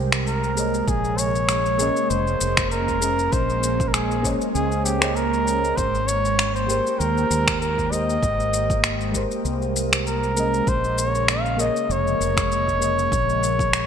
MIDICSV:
0, 0, Header, 1, 6, 480
1, 0, Start_track
1, 0, Tempo, 612245
1, 688, Time_signature, 4, 2, 24, 8
1, 10872, End_track
2, 0, Start_track
2, 0, Title_t, "Muted trumpet"
2, 0, Program_c, 0, 59
2, 218, Note_on_c, 0, 70, 82
2, 692, Note_on_c, 0, 68, 92
2, 704, Note_off_c, 0, 70, 0
2, 927, Note_on_c, 0, 73, 89
2, 939, Note_off_c, 0, 68, 0
2, 1642, Note_on_c, 0, 72, 97
2, 1654, Note_off_c, 0, 73, 0
2, 2123, Note_off_c, 0, 72, 0
2, 2128, Note_on_c, 0, 70, 86
2, 2606, Note_on_c, 0, 72, 99
2, 2618, Note_off_c, 0, 70, 0
2, 3042, Note_on_c, 0, 70, 67
2, 3054, Note_off_c, 0, 72, 0
2, 3084, Note_on_c, 0, 68, 84
2, 3095, Note_off_c, 0, 70, 0
2, 3357, Note_off_c, 0, 68, 0
2, 3560, Note_on_c, 0, 68, 92
2, 3801, Note_on_c, 0, 67, 80
2, 3813, Note_off_c, 0, 68, 0
2, 4042, Note_on_c, 0, 70, 94
2, 4054, Note_off_c, 0, 67, 0
2, 4521, Note_on_c, 0, 72, 99
2, 4533, Note_off_c, 0, 70, 0
2, 4760, Note_on_c, 0, 73, 98
2, 4771, Note_off_c, 0, 72, 0
2, 5128, Note_off_c, 0, 73, 0
2, 5133, Note_on_c, 0, 72, 91
2, 5481, Note_on_c, 0, 70, 102
2, 5493, Note_off_c, 0, 72, 0
2, 5958, Note_off_c, 0, 70, 0
2, 5963, Note_on_c, 0, 70, 96
2, 6207, Note_on_c, 0, 75, 104
2, 6218, Note_off_c, 0, 70, 0
2, 7167, Note_off_c, 0, 75, 0
2, 7898, Note_on_c, 0, 70, 94
2, 8377, Note_on_c, 0, 72, 109
2, 8389, Note_off_c, 0, 70, 0
2, 8618, Note_on_c, 0, 73, 93
2, 8629, Note_off_c, 0, 72, 0
2, 8858, Note_on_c, 0, 77, 102
2, 8870, Note_off_c, 0, 73, 0
2, 9098, Note_on_c, 0, 75, 91
2, 9110, Note_off_c, 0, 77, 0
2, 9342, Note_on_c, 0, 73, 100
2, 9354, Note_off_c, 0, 75, 0
2, 10872, Note_off_c, 0, 73, 0
2, 10872, End_track
3, 0, Start_track
3, 0, Title_t, "FM electric piano"
3, 0, Program_c, 1, 5
3, 0, Control_c, 1, 64, 127
3, 0, Note_on_c, 1, 56, 86
3, 0, Note_on_c, 1, 67, 82
3, 0, Note_on_c, 1, 70, 77
3, 0, Note_on_c, 1, 72, 94
3, 411, Note_off_c, 1, 56, 0
3, 417, Note_off_c, 1, 67, 0
3, 424, Note_off_c, 1, 70, 0
3, 431, Note_off_c, 1, 72, 0
3, 434, Note_on_c, 1, 58, 70
3, 443, Note_on_c, 1, 68, 64
3, 453, Note_on_c, 1, 70, 64
3, 460, Note_on_c, 1, 73, 61
3, 470, Note_on_c, 1, 75, 70
3, 697, Control_c, 1, 64, 0
3, 823, Control_c, 1, 64, 127
3, 1375, Note_off_c, 1, 58, 0
3, 1379, Note_off_c, 1, 68, 0
3, 1384, Note_off_c, 1, 70, 0
3, 1388, Note_off_c, 1, 73, 0
3, 1392, Note_on_c, 1, 58, 85
3, 1393, Note_off_c, 1, 75, 0
3, 1402, Note_on_c, 1, 68, 85
3, 1414, Note_on_c, 1, 70, 86
3, 1421, Note_on_c, 1, 61, 78
3, 1431, Note_on_c, 1, 75, 98
3, 2334, Note_off_c, 1, 58, 0
3, 2339, Note_off_c, 1, 68, 0
3, 2345, Note_off_c, 1, 70, 0
3, 2349, Note_off_c, 1, 61, 0
3, 2349, Note_on_c, 1, 58, 65
3, 2353, Note_off_c, 1, 75, 0
3, 2358, Note_on_c, 1, 68, 66
3, 2367, Note_on_c, 1, 72, 59
3, 2376, Note_on_c, 1, 61, 65
3, 2387, Note_on_c, 1, 75, 74
3, 3292, Note_off_c, 1, 58, 0
3, 3297, Note_off_c, 1, 68, 0
3, 3301, Note_off_c, 1, 72, 0
3, 3306, Note_off_c, 1, 61, 0
3, 3307, Note_on_c, 1, 58, 93
3, 3312, Note_off_c, 1, 75, 0
3, 3318, Note_on_c, 1, 68, 79
3, 3327, Note_on_c, 1, 72, 85
3, 3337, Note_on_c, 1, 73, 80
3, 3346, Note_on_c, 1, 75, 94
3, 3903, Note_off_c, 1, 58, 0
3, 3908, Note_off_c, 1, 68, 0
3, 3913, Note_off_c, 1, 72, 0
3, 3917, Note_on_c, 1, 58, 94
3, 3918, Note_off_c, 1, 73, 0
3, 3922, Note_off_c, 1, 75, 0
3, 3925, Note_on_c, 1, 68, 79
3, 3934, Note_on_c, 1, 72, 80
3, 3944, Note_on_c, 1, 73, 86
3, 3955, Note_on_c, 1, 75, 99
3, 4503, Note_off_c, 1, 58, 0
3, 4507, Note_off_c, 1, 68, 0
3, 4512, Note_off_c, 1, 72, 0
3, 4517, Note_off_c, 1, 73, 0
3, 4523, Note_off_c, 1, 75, 0
3, 4539, Control_c, 1, 64, 0
3, 4672, Control_c, 1, 64, 127
3, 5226, Note_on_c, 1, 56, 90
3, 5240, Note_on_c, 1, 67, 80
3, 5250, Note_on_c, 1, 70, 79
3, 5265, Note_on_c, 1, 72, 98
3, 6171, Note_off_c, 1, 56, 0
3, 6178, Note_off_c, 1, 67, 0
3, 6183, Note_off_c, 1, 70, 0
3, 6190, Note_off_c, 1, 72, 0
3, 6191, Note_on_c, 1, 56, 70
3, 6204, Note_on_c, 1, 67, 60
3, 6214, Note_on_c, 1, 70, 60
3, 6229, Note_on_c, 1, 72, 78
3, 7133, Note_off_c, 1, 56, 0
3, 7140, Note_off_c, 1, 67, 0
3, 7145, Note_off_c, 1, 70, 0
3, 7150, Note_on_c, 1, 56, 89
3, 7152, Note_off_c, 1, 72, 0
3, 7165, Note_on_c, 1, 67, 77
3, 7178, Note_on_c, 1, 70, 85
3, 7189, Note_on_c, 1, 72, 97
3, 8093, Note_off_c, 1, 56, 0
3, 8100, Note_off_c, 1, 67, 0
3, 8107, Note_off_c, 1, 70, 0
3, 8111, Note_on_c, 1, 58, 72
3, 8112, Note_off_c, 1, 72, 0
3, 8121, Note_on_c, 1, 68, 63
3, 8131, Note_on_c, 1, 70, 64
3, 8138, Note_on_c, 1, 61, 62
3, 8151, Note_on_c, 1, 75, 78
3, 8379, Control_c, 1, 64, 0
3, 8529, Control_c, 1, 64, 127
3, 9053, Note_off_c, 1, 58, 0
3, 9058, Note_off_c, 1, 68, 0
3, 9063, Note_off_c, 1, 70, 0
3, 9067, Note_off_c, 1, 61, 0
3, 9068, Note_on_c, 1, 58, 92
3, 9073, Note_off_c, 1, 75, 0
3, 9079, Note_on_c, 1, 68, 81
3, 9090, Note_on_c, 1, 70, 82
3, 9097, Note_on_c, 1, 73, 77
3, 9107, Note_on_c, 1, 75, 100
3, 10012, Note_off_c, 1, 58, 0
3, 10017, Note_off_c, 1, 68, 0
3, 10023, Note_off_c, 1, 70, 0
3, 10026, Note_off_c, 1, 73, 0
3, 10026, Note_on_c, 1, 58, 72
3, 10031, Note_off_c, 1, 75, 0
3, 10039, Note_on_c, 1, 68, 60
3, 10047, Note_on_c, 1, 70, 59
3, 10058, Note_on_c, 1, 73, 62
3, 10067, Note_on_c, 1, 75, 77
3, 10872, Note_off_c, 1, 58, 0
3, 10872, Note_off_c, 1, 68, 0
3, 10872, Note_off_c, 1, 70, 0
3, 10872, Note_off_c, 1, 73, 0
3, 10872, Note_off_c, 1, 75, 0
3, 10872, End_track
4, 0, Start_track
4, 0, Title_t, "Ambient pad"
4, 0, Program_c, 2, 92
4, 0, Note_on_c, 2, 48, 75
4, 0, Note_on_c, 2, 56, 83
4, 0, Note_on_c, 2, 79, 91
4, 655, Note_off_c, 2, 48, 0
4, 655, Note_off_c, 2, 79, 0
4, 681, Note_on_c, 2, 58, 77
4, 683, Note_on_c, 2, 61, 93
4, 4493, Note_off_c, 2, 58, 0
4, 4494, Note_off_c, 2, 61, 0
4, 4529, Note_on_c, 2, 79, 82
4, 4530, Note_on_c, 2, 58, 90
4, 8335, Note_off_c, 2, 56, 0
4, 8337, Note_off_c, 2, 58, 0
4, 8337, Note_off_c, 2, 79, 0
4, 8368, Note_on_c, 2, 56, 73
4, 8370, Note_on_c, 2, 58, 85
4, 8371, Note_on_c, 2, 49, 81
4, 10872, Note_off_c, 2, 49, 0
4, 10872, Note_off_c, 2, 56, 0
4, 10872, Note_off_c, 2, 58, 0
4, 10872, End_track
5, 0, Start_track
5, 0, Title_t, "Fretless electric bass"
5, 0, Program_c, 3, 35
5, 0, Note_on_c, 3, 36, 89
5, 640, Note_off_c, 3, 36, 0
5, 684, Note_on_c, 3, 34, 86
5, 1483, Note_off_c, 3, 34, 0
5, 1647, Note_on_c, 3, 29, 94
5, 1831, Note_off_c, 3, 29, 0
5, 1888, Note_on_c, 3, 29, 88
5, 2563, Note_off_c, 3, 29, 0
5, 2606, Note_on_c, 3, 34, 84
5, 3404, Note_off_c, 3, 34, 0
5, 3565, Note_on_c, 3, 37, 88
5, 4481, Note_off_c, 3, 37, 0
5, 4528, Note_on_c, 3, 32, 82
5, 5325, Note_off_c, 3, 32, 0
5, 5486, Note_on_c, 3, 39, 93
5, 5670, Note_off_c, 3, 39, 0
5, 5724, Note_on_c, 3, 39, 91
5, 6401, Note_off_c, 3, 39, 0
5, 6447, Note_on_c, 3, 32, 81
5, 7244, Note_off_c, 3, 32, 0
5, 7406, Note_on_c, 3, 36, 90
5, 8322, Note_off_c, 3, 36, 0
5, 8364, Note_on_c, 3, 34, 83
5, 9163, Note_off_c, 3, 34, 0
5, 9324, Note_on_c, 3, 29, 95
5, 9509, Note_off_c, 3, 29, 0
5, 9566, Note_on_c, 3, 29, 88
5, 10242, Note_off_c, 3, 29, 0
5, 10286, Note_on_c, 3, 34, 83
5, 10872, Note_off_c, 3, 34, 0
5, 10872, End_track
6, 0, Start_track
6, 0, Title_t, "Drums"
6, 98, Note_on_c, 9, 26, 76
6, 101, Note_on_c, 9, 82, 32
6, 176, Note_off_c, 9, 26, 0
6, 179, Note_off_c, 9, 82, 0
6, 211, Note_on_c, 9, 82, 43
6, 289, Note_off_c, 9, 82, 0
6, 342, Note_on_c, 9, 82, 23
6, 421, Note_off_c, 9, 82, 0
6, 448, Note_on_c, 9, 82, 71
6, 526, Note_off_c, 9, 82, 0
6, 582, Note_on_c, 9, 82, 33
6, 660, Note_off_c, 9, 82, 0
6, 687, Note_on_c, 9, 36, 108
6, 689, Note_on_c, 9, 82, 43
6, 765, Note_off_c, 9, 36, 0
6, 768, Note_off_c, 9, 82, 0
6, 820, Note_on_c, 9, 82, 21
6, 898, Note_off_c, 9, 82, 0
6, 927, Note_on_c, 9, 82, 77
6, 1006, Note_off_c, 9, 82, 0
6, 1061, Note_on_c, 9, 82, 33
6, 1140, Note_off_c, 9, 82, 0
6, 1165, Note_on_c, 9, 26, 76
6, 1168, Note_on_c, 9, 82, 43
6, 1244, Note_off_c, 9, 26, 0
6, 1247, Note_off_c, 9, 82, 0
6, 1300, Note_on_c, 9, 82, 22
6, 1378, Note_off_c, 9, 82, 0
6, 1406, Note_on_c, 9, 82, 78
6, 1484, Note_off_c, 9, 82, 0
6, 1540, Note_on_c, 9, 82, 31
6, 1619, Note_off_c, 9, 82, 0
6, 1649, Note_on_c, 9, 82, 43
6, 1728, Note_off_c, 9, 82, 0
6, 1782, Note_on_c, 9, 82, 20
6, 1861, Note_off_c, 9, 82, 0
6, 1888, Note_on_c, 9, 82, 81
6, 1966, Note_off_c, 9, 82, 0
6, 2017, Note_on_c, 9, 26, 72
6, 2019, Note_on_c, 9, 36, 99
6, 2020, Note_on_c, 9, 82, 31
6, 2095, Note_off_c, 9, 26, 0
6, 2097, Note_off_c, 9, 36, 0
6, 2098, Note_off_c, 9, 82, 0
6, 2129, Note_on_c, 9, 82, 43
6, 2207, Note_off_c, 9, 82, 0
6, 2259, Note_on_c, 9, 36, 58
6, 2261, Note_on_c, 9, 82, 21
6, 2338, Note_off_c, 9, 36, 0
6, 2339, Note_off_c, 9, 82, 0
6, 2367, Note_on_c, 9, 82, 77
6, 2445, Note_off_c, 9, 82, 0
6, 2500, Note_on_c, 9, 82, 33
6, 2579, Note_off_c, 9, 82, 0
6, 2607, Note_on_c, 9, 36, 111
6, 2607, Note_on_c, 9, 82, 44
6, 2685, Note_off_c, 9, 82, 0
6, 2686, Note_off_c, 9, 36, 0
6, 2741, Note_on_c, 9, 82, 22
6, 2820, Note_off_c, 9, 82, 0
6, 2849, Note_on_c, 9, 82, 77
6, 2927, Note_off_c, 9, 82, 0
6, 2979, Note_on_c, 9, 36, 104
6, 2983, Note_on_c, 9, 82, 30
6, 3057, Note_off_c, 9, 36, 0
6, 3062, Note_off_c, 9, 82, 0
6, 3089, Note_on_c, 9, 26, 73
6, 3092, Note_on_c, 9, 82, 42
6, 3167, Note_off_c, 9, 26, 0
6, 3170, Note_off_c, 9, 82, 0
6, 3225, Note_on_c, 9, 82, 21
6, 3303, Note_off_c, 9, 82, 0
6, 3326, Note_on_c, 9, 36, 58
6, 3330, Note_on_c, 9, 82, 77
6, 3405, Note_off_c, 9, 36, 0
6, 3409, Note_off_c, 9, 82, 0
6, 3461, Note_on_c, 9, 82, 32
6, 3539, Note_off_c, 9, 82, 0
6, 3570, Note_on_c, 9, 82, 42
6, 3648, Note_off_c, 9, 82, 0
6, 3698, Note_on_c, 9, 82, 21
6, 3777, Note_off_c, 9, 82, 0
6, 3808, Note_on_c, 9, 82, 77
6, 3886, Note_off_c, 9, 82, 0
6, 3934, Note_on_c, 9, 26, 73
6, 3937, Note_on_c, 9, 82, 32
6, 4012, Note_off_c, 9, 26, 0
6, 4016, Note_off_c, 9, 82, 0
6, 4049, Note_on_c, 9, 82, 39
6, 4127, Note_off_c, 9, 82, 0
6, 4182, Note_on_c, 9, 82, 23
6, 4261, Note_off_c, 9, 82, 0
6, 4292, Note_on_c, 9, 82, 71
6, 4370, Note_off_c, 9, 82, 0
6, 4425, Note_on_c, 9, 82, 34
6, 4504, Note_off_c, 9, 82, 0
6, 4528, Note_on_c, 9, 36, 103
6, 4530, Note_on_c, 9, 82, 42
6, 4606, Note_off_c, 9, 36, 0
6, 4609, Note_off_c, 9, 82, 0
6, 4663, Note_on_c, 9, 82, 21
6, 4741, Note_off_c, 9, 82, 0
6, 4770, Note_on_c, 9, 82, 79
6, 4848, Note_off_c, 9, 82, 0
6, 4901, Note_on_c, 9, 82, 29
6, 4980, Note_off_c, 9, 82, 0
6, 5009, Note_on_c, 9, 26, 75
6, 5013, Note_on_c, 9, 82, 44
6, 5088, Note_off_c, 9, 26, 0
6, 5091, Note_off_c, 9, 82, 0
6, 5143, Note_on_c, 9, 82, 22
6, 5222, Note_off_c, 9, 82, 0
6, 5249, Note_on_c, 9, 82, 70
6, 5328, Note_off_c, 9, 82, 0
6, 5384, Note_on_c, 9, 82, 31
6, 5462, Note_off_c, 9, 82, 0
6, 5493, Note_on_c, 9, 82, 43
6, 5571, Note_off_c, 9, 82, 0
6, 5627, Note_on_c, 9, 82, 20
6, 5705, Note_off_c, 9, 82, 0
6, 5731, Note_on_c, 9, 82, 78
6, 5809, Note_off_c, 9, 82, 0
6, 5861, Note_on_c, 9, 26, 73
6, 5861, Note_on_c, 9, 36, 90
6, 5865, Note_on_c, 9, 82, 30
6, 5939, Note_off_c, 9, 36, 0
6, 5940, Note_off_c, 9, 26, 0
6, 5943, Note_off_c, 9, 82, 0
6, 5974, Note_on_c, 9, 82, 42
6, 6053, Note_off_c, 9, 82, 0
6, 6101, Note_on_c, 9, 36, 60
6, 6106, Note_on_c, 9, 82, 21
6, 6180, Note_off_c, 9, 36, 0
6, 6185, Note_off_c, 9, 82, 0
6, 6214, Note_on_c, 9, 82, 73
6, 6292, Note_off_c, 9, 82, 0
6, 6347, Note_on_c, 9, 82, 30
6, 6426, Note_off_c, 9, 82, 0
6, 6449, Note_on_c, 9, 36, 103
6, 6453, Note_on_c, 9, 82, 40
6, 6527, Note_off_c, 9, 36, 0
6, 6531, Note_off_c, 9, 82, 0
6, 6585, Note_on_c, 9, 82, 21
6, 6664, Note_off_c, 9, 82, 0
6, 6691, Note_on_c, 9, 82, 73
6, 6770, Note_off_c, 9, 82, 0
6, 6820, Note_on_c, 9, 36, 97
6, 6825, Note_on_c, 9, 82, 30
6, 6898, Note_off_c, 9, 36, 0
6, 6903, Note_off_c, 9, 82, 0
6, 6928, Note_on_c, 9, 26, 76
6, 6931, Note_on_c, 9, 82, 41
6, 7007, Note_off_c, 9, 26, 0
6, 7010, Note_off_c, 9, 82, 0
6, 7062, Note_on_c, 9, 82, 21
6, 7140, Note_off_c, 9, 82, 0
6, 7169, Note_on_c, 9, 36, 57
6, 7171, Note_on_c, 9, 82, 72
6, 7247, Note_off_c, 9, 36, 0
6, 7249, Note_off_c, 9, 82, 0
6, 7302, Note_on_c, 9, 82, 30
6, 7380, Note_off_c, 9, 82, 0
6, 7411, Note_on_c, 9, 82, 39
6, 7489, Note_off_c, 9, 82, 0
6, 7543, Note_on_c, 9, 82, 19
6, 7621, Note_off_c, 9, 82, 0
6, 7653, Note_on_c, 9, 82, 75
6, 7731, Note_off_c, 9, 82, 0
6, 7783, Note_on_c, 9, 26, 68
6, 7786, Note_on_c, 9, 82, 31
6, 7862, Note_off_c, 9, 26, 0
6, 7865, Note_off_c, 9, 82, 0
6, 7893, Note_on_c, 9, 82, 41
6, 7972, Note_off_c, 9, 82, 0
6, 8024, Note_on_c, 9, 82, 20
6, 8102, Note_off_c, 9, 82, 0
6, 8129, Note_on_c, 9, 82, 70
6, 8207, Note_off_c, 9, 82, 0
6, 8263, Note_on_c, 9, 82, 30
6, 8341, Note_off_c, 9, 82, 0
6, 8367, Note_on_c, 9, 36, 98
6, 8368, Note_on_c, 9, 82, 40
6, 8445, Note_off_c, 9, 36, 0
6, 8446, Note_off_c, 9, 82, 0
6, 8500, Note_on_c, 9, 82, 19
6, 8578, Note_off_c, 9, 82, 0
6, 8609, Note_on_c, 9, 82, 70
6, 8688, Note_off_c, 9, 82, 0
6, 8742, Note_on_c, 9, 82, 30
6, 8820, Note_off_c, 9, 82, 0
6, 8847, Note_on_c, 9, 26, 72
6, 8850, Note_on_c, 9, 82, 44
6, 8925, Note_off_c, 9, 26, 0
6, 8928, Note_off_c, 9, 82, 0
6, 8982, Note_on_c, 9, 82, 20
6, 9061, Note_off_c, 9, 82, 0
6, 9090, Note_on_c, 9, 82, 71
6, 9168, Note_off_c, 9, 82, 0
6, 9223, Note_on_c, 9, 82, 31
6, 9301, Note_off_c, 9, 82, 0
6, 9334, Note_on_c, 9, 82, 39
6, 9412, Note_off_c, 9, 82, 0
6, 9466, Note_on_c, 9, 82, 19
6, 9544, Note_off_c, 9, 82, 0
6, 9574, Note_on_c, 9, 82, 70
6, 9653, Note_off_c, 9, 82, 0
6, 9697, Note_on_c, 9, 36, 90
6, 9702, Note_on_c, 9, 26, 72
6, 9706, Note_on_c, 9, 82, 29
6, 9775, Note_off_c, 9, 36, 0
6, 9781, Note_off_c, 9, 26, 0
6, 9784, Note_off_c, 9, 82, 0
6, 9814, Note_on_c, 9, 82, 39
6, 9892, Note_off_c, 9, 82, 0
6, 9937, Note_on_c, 9, 36, 52
6, 9947, Note_on_c, 9, 82, 21
6, 10015, Note_off_c, 9, 36, 0
6, 10025, Note_off_c, 9, 82, 0
6, 10050, Note_on_c, 9, 82, 70
6, 10129, Note_off_c, 9, 82, 0
6, 10183, Note_on_c, 9, 82, 28
6, 10261, Note_off_c, 9, 82, 0
6, 10285, Note_on_c, 9, 36, 103
6, 10292, Note_on_c, 9, 82, 44
6, 10364, Note_off_c, 9, 36, 0
6, 10370, Note_off_c, 9, 82, 0
6, 10423, Note_on_c, 9, 82, 20
6, 10501, Note_off_c, 9, 82, 0
6, 10531, Note_on_c, 9, 82, 74
6, 10610, Note_off_c, 9, 82, 0
6, 10657, Note_on_c, 9, 36, 98
6, 10665, Note_on_c, 9, 82, 30
6, 10735, Note_off_c, 9, 36, 0
6, 10743, Note_off_c, 9, 82, 0
6, 10768, Note_on_c, 9, 26, 80
6, 10771, Note_on_c, 9, 82, 42
6, 10846, Note_off_c, 9, 26, 0
6, 10849, Note_off_c, 9, 82, 0
6, 10872, End_track
0, 0, End_of_file